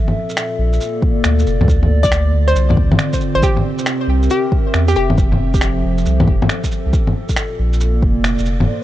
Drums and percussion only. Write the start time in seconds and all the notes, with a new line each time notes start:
0.08 low bongo
0.29 shaker
0.37 finger snap, shaker
0.73 shaker
0.80 shaker
1.02 kick
1.24 finger snap, shaker
1.39 shaker
1.46 shaker
1.61 low bongo
1.68 kick, shaker
1.83 low bongo
2.04 kick, shaker
2.12 finger snap, shaker
2.48 shaker
2.56 shaker
2.70 low bongo
2.77 kick
2.92 low bongo
2.99 finger snap, shaker
3.13 kick, shaker
3.21 shaker
3.42 kick, shaker
3.57 low bongo
3.78 shaker
3.86 finger snap, shaker
4.23 shaker
4.30 shaker
4.52 kick
4.74 finger snap, shaker
4.88 shaker
4.95 shaker
5.10 low bongo
5.18 kick, shaker
5.32 low bongo
5.54 kick, shaker
5.61 finger snap, shaker
5.98 shaker
6.05 shaker
6.20 low bongo
6.28 kick
6.42 low bongo
6.49 finger snap, shaker
6.64 kick, shaker
6.71 shaker
6.93 kick, shaker
7.07 low bongo
7.29 kick, shaker
7.37 finger snap, shaker
7.73 shaker
7.80 shaker
8.03 kick
8.24 finger snap, shaker
8.38 shaker
8.46 shaker
8.60 low bongo